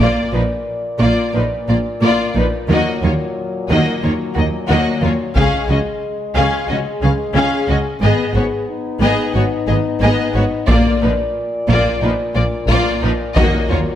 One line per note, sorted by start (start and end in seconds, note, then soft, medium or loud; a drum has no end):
0.00 5.31 A#2 soft
0.00 0.32 A#3 soft
0.00 0.31 F4 soft
0.00 2.64 D5 soft
0.00 0.32 D5 soft
0.33 0.42 A#1 soft
0.33 0.41 A#2 soft
0.33 0.41 F3 soft
0.33 0.42 D#4 soft
0.33 0.42 B4 soft
0.99 1.10 A#1 soft
0.99 1.07 A#2 soft
0.99 1.32 A#3 soft
0.99 1.33 F4 soft
0.99 1.32 D5 soft
1.33 1.43 A#1 soft
1.33 1.41 A#2 soft
1.33 1.42 F3 soft
1.33 1.43 D#4 soft
1.33 1.43 B4 soft
1.68 1.77 A#1 soft
1.68 1.76 A#2 soft
1.68 1.77 A#3 soft
1.68 1.76 F4 soft
1.68 1.77 D5 soft
2.01 2.10 A#1 soft
2.01 2.09 A#2 medium
2.01 2.33 A#3 soft
2.01 2.34 F4 medium
2.01 2.33 D5 soft
2.35 2.44 A#1 soft
2.35 2.43 A#2 soft
2.35 2.45 F3 soft
2.35 2.44 D#4 soft
2.35 2.46 B4 soft
2.68 2.77 D#2 soft
2.68 2.76 D#3 soft
2.68 5.32 F#3 soft
2.68 3.01 A#3 soft
2.68 3.01 F#4 soft
2.68 3.02 D#5 soft
3.02 3.10 D#2 soft
3.02 3.11 D#3 soft
3.02 3.13 A#3 soft
3.02 3.11 F4 soft
3.02 3.12 C#5 soft
3.69 3.77 D#2 medium
3.69 3.78 D#3 medium
3.69 4.01 A#3 soft
3.69 4.01 F#4 soft
3.69 4.01 D#5 soft
4.02 4.11 D#2 soft
4.02 4.11 D#3 soft
4.02 4.12 A#3 soft
4.02 4.10 F4 soft
4.02 4.12 C#5 soft
4.34 4.44 D#2 soft
4.34 4.44 D#3 soft
4.34 4.45 A#3 soft
4.34 4.42 F#4 soft
4.38 4.46 D#5 soft
4.67 4.77 D#2 soft
4.67 4.77 D#3 medium
4.67 5.01 A#3 medium
4.67 4.99 F#4 soft
4.67 5.01 D#5 soft
5.01 5.11 D#2 soft
5.01 5.10 D#3 soft
5.01 5.11 A#3 soft
5.01 5.09 F4 soft
5.01 5.12 C#5 soft
5.35 5.44 C#2 soft
5.35 5.43 C#3 medium
5.35 7.86 G#3 soft
5.35 5.67 C#4 soft
5.35 5.67 G#4 medium
5.35 8.65 G#4 soft
5.35 5.67 F5 medium
5.35 taiko medium
5.68 5.77 C#2 soft
5.68 5.76 C#3 soft
5.68 5.78 C#4 soft
5.68 5.77 F#4 soft
5.68 5.78 D#5 soft
6.35 6.43 C#2 medium
6.35 6.43 C#3 medium
6.35 6.67 C#4 soft
6.35 6.66 G#4 soft
6.35 6.67 F5 medium
6.68 6.77 C#2 soft
6.68 6.78 C#3 soft
6.68 6.78 C#4 soft
6.68 6.76 F#4 soft
6.68 6.77 D#5 soft
7.02 7.10 C#2 soft
7.02 7.11 C#3 soft
7.02 7.10 C#4 soft
7.02 7.10 G#4 soft
7.02 7.12 F5 soft
7.34 7.42 C#2 medium
7.34 7.44 C#3 medium
7.34 7.67 C#4 medium
7.34 7.66 G#4 soft
7.34 7.67 F5 medium
7.68 7.76 C#2 soft
7.68 7.77 C#3 soft
7.68 7.76 C#4 soft
7.68 7.76 F#4 soft
7.68 7.78 D#5 soft
8.01 8.10 G#1 medium
8.01 8.09 G#2 medium
8.01 10.65 B3 soft
8.01 8.34 B3 soft
8.01 8.33 G#4 soft
8.01 8.33 D#5 medium
8.33 8.42 G#1 soft
8.33 8.43 G#2 soft
8.33 8.44 B3 soft
8.33 8.41 F#4 soft
8.33 8.44 C#5 soft
8.69 10.69 D#4 soft
9.01 9.09 G#1 medium
9.01 9.09 G#2 medium
9.01 9.32 B3 medium
9.01 9.33 G#4 medium
9.01 9.33 D#5 soft
9.34 9.42 G#1 soft
9.34 9.43 G#2 soft
9.34 9.44 B3 soft
9.34 9.42 F#4 soft
9.34 9.44 C#5 soft
9.67 9.75 G#1 soft
9.67 9.76 G#2 soft
9.67 9.78 B3 soft
9.67 9.75 G#4 soft
9.67 9.76 D#5 soft
10.01 10.09 G#1 medium
10.01 10.09 G#2 medium
10.01 10.33 B3 medium
10.01 10.32 G#4 medium
10.01 10.34 D#5 medium
10.35 10.43 G#1 soft
10.35 10.43 G#2 soft
10.35 10.43 B3 soft
10.35 10.43 F#4 soft
10.35 10.43 C#5 soft
10.68 10.77 A#1 medium
10.68 13.95 A#2 soft
10.68 10.77 A#2 medium
10.68 11.00 A#3 medium
10.68 10.99 F4 medium
10.68 10.99 D5 medium
10.68 13.33 D5 soft
10.68 taiko medium
11.02 11.11 A#1 soft
11.02 11.11 A#2 soft
11.02 11.11 F3 soft
11.02 11.10 D#4 soft
11.02 11.11 B4 soft
11.68 11.77 A#1 medium
11.68 11.77 A#2 medium
11.68 12.01 A#3 medium
11.68 12.00 F4 medium
11.68 12.01 D5 medium
11.68 taiko medium
12.02 12.10 A#1 soft
12.02 12.11 A#2 soft
12.02 12.12 F3 soft
12.02 12.10 D#4 soft
12.02 12.12 B4 soft
12.34 12.43 A#1 soft
12.34 12.44 A#2 soft
12.34 12.45 A#3 soft
12.34 12.42 F4 soft
12.34 12.44 D5 medium
12.68 12.76 A#1 medium
12.68 12.78 A#2 medium
12.68 13.01 A#3 medium
12.68 13.01 F4 medium
12.68 13.01 D5 medium
12.68 taiko medium
13.01 13.09 A#1 soft
13.01 13.10 A#2 soft
13.01 13.12 F3 soft
13.01 13.11 D#4 soft
13.01 13.12 B4 soft
13.35 13.44 D#2 medium
13.35 13.44 D#3 medium
13.35 13.95 F#3 medium
13.35 13.68 A#3 medium
13.35 13.67 F#4 medium
13.35 13.67 D#5 medium
13.35 taiko medium
13.70 13.78 D#2 soft
13.70 13.78 D#3 soft
13.70 13.79 A#3 soft
13.70 13.78 F4 soft
13.70 13.78 C#5 soft